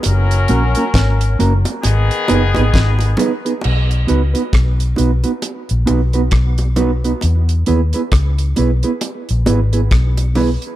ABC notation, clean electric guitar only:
X:1
M:4/4
L:1/16
Q:"Swing 16ths" 1/4=67
K:B
V:1 name="Clean electric guitar"
z2 [A,CFA] [A,CFA] z2 [A,CFA] z3 [B,DGB] [B,DGB] z2 [B,DGB] [B,DGB] | z2 [B,DFB] [B,DFB] z2 [B,DFB] [B,DFB] z2 [B,DFB] [B,DFB] z2 [B,DFB] [B,DFB] | z2 [B,EGB] [B,EGB] z2 [B,EGB] [B,EGB] z2 [B,EGB] [B,EGB] z2 [B,EGB] z |]